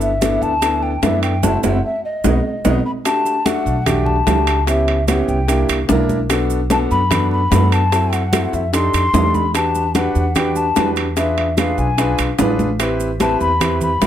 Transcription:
Already playing: upright bass G1
0.01 flute E5, high conga, maracas
0.21 grand piano B3 D4 E4 A4, high bongo, high conga, high timbale, low timbale, maracas
0.42 upright bass D2, flute A5, high conga, maracas
0.62 grand piano B3 D4 E4 A4, high bongo, high conga, high timbale, maracas
0.82 flute G5, high conga
1.02 upright bass F#2, grand piano B3 D4 E4 A4, flute E5, high bongo, low bongo, high conga, high timbale, low timbale, maracas
1.23 flute G5, high conga, high timbale, maracas
1.43 upright bass F#1, grand piano C4 E4 F#4, flute A5, low bongo, high conga, high timbale, maracas
1.63 upright bass F#1, grand piano C4 E4 F#4, flute F#5, low bongo, high conga, high timbale, maracas
1.85 flute E5
2.05 flute D#5
2.24 upright bass B1, grand piano B3 D#4 F#4, low bongo, high conga, high timbale, maracas
2.65 upright bass B1, grand piano B3 D#4 F#4, low bongo, high conga, high timbale, maracas
2.85 flute B5
3.05 grand piano A3 D4 F#4 G4, flute A5, high bongo, high conga, high timbale, maracas
3.25 high conga, maracas
3.45 grand piano A3 D4 F#4 A4, flute F#5, high bongo, high conga, high timbale, low timbale, maracas
3.66 upright bass B1, high conga, maracas
3.86 grand piano A3 D4 F#4 G4, flute G5, high bongo, high conga, low conga, high timbale, maracas
4.06 flute A5, high conga, low conga
4.26 upright bass C#2, grand piano A3 D4 F#4 G4, high bongo, low bongo, high conga, high timbale, low timbale, maracas
4.47 high conga, high timbale, maracas
4.66 grand piano B3 C#4 E4 G4, flute E5, high bongo, high conga, high timbale, maracas
4.88 high bongo, high conga, high timbale
5.08 grand piano B3 C#4 E4 G4, flute F#5, high bongo, high conga, high timbale, low timbale, maracas
5.28 upright bass C2, flute G5, high bongo, high conga, maracas
5.48 grand piano A#3 D4 E4 G4, high bongo, high conga, high timbale, maracas
5.69 upright bass C2, high conga, high timbale, maracas
5.88 upright bass B1, grand piano A#3 D4 E4 A#4, high bongo, low bongo, high conga, low timbale, maracas
6.09 high bongo, high conga, maracas
6.29 grand piano B3 D4 F#4 A4, high bongo, high conga, high timbale, maracas
6.50 high conga, maracas
6.70 grand piano B3 D4 F#4 A4, flute A5, high bongo, high conga, high timbale, low timbale, maracas
6.91 upright bass F#2, flute B5, high conga, maracas
7.10 grand piano B3 D4 F#4 A4, high bongo, high conga, low conga, high timbale, maracas
7.31 flute B5, high conga
7.51 upright bass F#2, grand piano B3 D4 F#4 A4, high bongo, low bongo, high conga, high timbale, low timbale, maracas
7.72 flute A5, high timbale, maracas
7.92 grand piano C4 E4 F#4 A4, high bongo, high conga, high timbale, maracas
8.12 flute F#5, high bongo, high conga, high timbale, maracas
8.32 grand piano C4 E4 F#4 A4, high bongo, high conga, high timbale, low timbale, maracas
8.53 upright bass F2, flute E5, high bongo, high conga, maracas
8.73 grand piano D4 D#4 G4 A4, flute C6, high bongo, high conga, high timbale, maracas
8.94 upright bass F2, high conga, high timbale, maracas
9.14 upright bass E2, grand piano D4 D#4 G4 A4, high bongo, low bongo, high conga, low timbale, maracas
9.34 flute B5, high bongo, high conga, maracas
9.54 grand piano D4 F#4 G4 B4, flute A5, high bongo, high conga, high timbale, maracas
9.75 high conga, maracas
9.95 grand piano D4 F#4 G4 B4, flute F#5, high bongo, high conga, high timbale, low timbale, maracas
10.15 upright bass E2, high conga, maracas
10.35 grand piano D4 F#4 G4 B4, flute G5, high bongo, high conga, low conga, high timbale, maracas
10.56 flute A5, high conga, maracas
10.76 upright bass E2, grand piano D4 F#4 G4 B4, high bongo, low bongo, high conga, high timbale, low timbale, maracas
10.96 high conga, high timbale, maracas
11.17 grand piano D4 F4 G#4 B4, flute E5, high bongo, high conga, high timbale, maracas
11.37 high bongo, high conga, high timbale
11.57 grand piano D4 F4 G#4 B4, flute F5, high bongo, high conga, high timbale, low timbale, maracas
11.78 upright bass B1, flute G#5, high bongo, high conga, maracas
11.98 grand piano D4 F4 G#4 B4, high bongo, high conga, high timbale, maracas
12.18 upright bass B1, high conga, high timbale, maracas
12.38 upright bass A1, grand piano D4 F4 G#4 B4, high bongo, low bongo, high conga, low timbale, maracas
12.59 high bongo, high conga, maracas
12.79 grand piano C4 E4 G4 B4, high bongo, high conga, high timbale, maracas
13.00 high conga, maracas
13.20 grand piano C4 E4 G4 B4, flute A5, high bongo, high conga, high timbale, low timbale, maracas
13.40 upright bass E2, flute B5, high conga, maracas
13.60 grand piano C4 E4 G4 B4, high bongo, high conga, low conga, high timbale, maracas
13.81 flute B5, high conga, low conga, maracas
14.01 upright bass F2, grand piano C4 E4 G4 B4, high bongo, low bongo, high conga, high timbale, low timbale, maracas

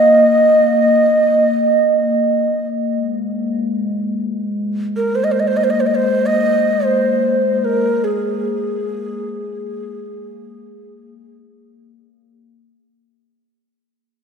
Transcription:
Already playing: glass harmonica A#3, native american-style wooden flute D#5
2.90 glass harmonica G#3
4.97 native american-style wooden flute A#4
5.07 glass harmonica A#3
5.15 native american-style wooden flute C5
5.24 native american-style wooden flute D#5
5.32 native american-style wooden flute C5
5.40 native american-style wooden flute D#5
5.48 native american-style wooden flute C5
5.57 native american-style wooden flute D#5
5.64 native american-style wooden flute C5
5.70 native american-style wooden flute D#5
5.80 native american-style wooden flute C5
5.86 native american-style wooden flute D#5
5.96 native american-style wooden flute C5
6.26 native american-style wooden flute D#5
6.85 native american-style wooden flute C5
7.65 native american-style wooden flute A#4
8.04 native american-style wooden flute G#4

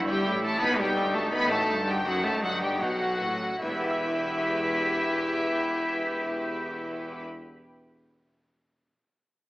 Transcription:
Already playing: double bass section G1, lute G2, cello section G2, viola section E4
0.09 cello G3, lute E4, violin section G4 G5
0.26 double bass section A1, lute A2 G4, cello section A2
0.43 cello A3, lute E4, violin section A4 A5
0.61 double bass section B1, cello section B2, lute B2, cello B3, viola section D#4, violin section B4 B5
0.78 cello G3, lute F#4, violin section G4 G5
0.96 double bass section G1, lute G2 A4, cello section G2
1.14 cello A3, lute F#4, violin section A4 A5
1.32 double bass section A1, lute A2 D#4, cello section A2, cello B3, violin section B4 B5
1.50 cello A3, lute F#4, violin section A4 A5
1.69 double bass section G1, lute G2 A4, cello section G2
1.87 cello G3, lute F#4, violin section G4 G5
2.05 double bass section F#1, lute F#2, cello section F#2, cello F#3, viola section D#4, violin section F#4 F#5
2.24 cello A3, lute F#4, violin section A4 A5
2.42 double bass section G1, cello section G2, lute G2 A4, cello F#3, violin section F#4 F#5
2.62 cello G3, lute F#4, violin section G4 G5
2.81 double bass section B1, cello section B2, lute B2 D#4, cello F#3, viola section F#4, violin section F#4 F#5
3.02 lute F#4
3.22 double bass section A1, cello section A2, lute A2 A4
3.42 lute F#4
3.61 double bass section E1, cello section E2, lute E3, cello E4, viola section G4, violin section B4 E5
3.69 lute B3
3.76 lute E4
3.83 lute G4
3.90 lute E5

